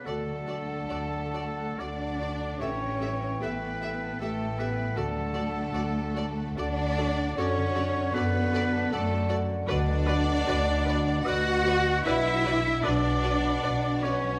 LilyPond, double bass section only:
\new Staff \with { instrumentName = "Double bass section" } { \clef bass \time 3/4 \key d \major \tempo 4 = 76 d,4 d,4 d,4 | a,,4 a,,4 a,,4 | d,4 d,4 d,4 | fis,4 fis,4 fis,4 |
\key b \minor d,4 d,4 d,4 | b,,4 b,,4 b,,4 | }